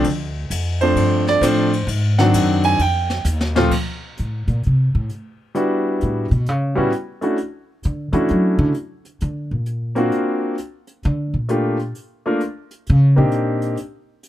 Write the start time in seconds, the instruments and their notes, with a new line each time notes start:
0.04 upright bass D2, ride
0.50 upright bass F2, hi-hat pedal, ride
0.81 grand piano F3 A3 C4 D4 C5, ride
0.95 upright bass G2, ride
1.27 grand piano D5, snare
1.41 upright bass A2, grand piano F3 A3 C4 D4 C5, hi-hat pedal, ride
1.73 ride
1.87 upright bass G#2, ride
2.19 grand piano D#3 F#3 C4 D4 F#5, snare
2.34 upright bass F#2, hi-hat pedal, ride
2.63 grand piano G#5, ride
2.79 upright bass F2, grand piano G5, ride
3.10 snare
3.25 upright bass D#2, hi-hat pedal
3.41 snare
3.56 grand piano A#2 F3 A3 C4 F4, snare
3.71 kick, crash
4.17 upright bass A2, closed hi-hat
4.48 upright bass A#2, closed hi-hat
4.63 upright bass C3, closed hi-hat
4.95 upright bass A2
5.09 closed hi-hat
5.55 grand piano G3 B3 D4 E4 F#4, closed hi-hat
6.01 upright bass A2, closed hi-hat
6.31 upright bass B2, closed hi-hat
6.46 upright bass C#3, closed hi-hat
6.75 upright bass A2, grand piano G3 B3 C#4 E4 F#4
6.92 closed hi-hat
7.21 grand piano A3 C#4 D4 E4 F#4, closed hi-hat
7.38 closed hi-hat
7.83 upright bass D3, closed hi-hat
8.12 upright bass E3, grand piano A3 C#4 D4 E4 F#4, closed hi-hat
8.29 upright bass F#3, closed hi-hat
8.59 upright bass D3
8.74 closed hi-hat
9.05 closed hi-hat
9.21 upright bass D3, closed hi-hat
9.51 upright bass A#2
9.66 closed hi-hat
9.95 grand piano A#3 C4 D4 F4 F#4, closed hi-hat
10.12 closed hi-hat
10.58 closed hi-hat
10.87 closed hi-hat
11.03 upright bass D3, closed hi-hat
11.34 upright bass A#2
11.49 grand piano A3 A#3 D4 F4 G4, closed hi-hat
11.79 closed hi-hat
11.95 closed hi-hat
12.26 grand piano A3 A#3 D4 F4 A#4
12.41 closed hi-hat
12.71 closed hi-hat
12.87 upright bass C#3, closed hi-hat
13.16 upright bass A#2, grand piano A#3 C4 D4 D#4 G4
13.32 closed hi-hat
13.62 closed hi-hat
13.77 closed hi-hat
14.23 closed hi-hat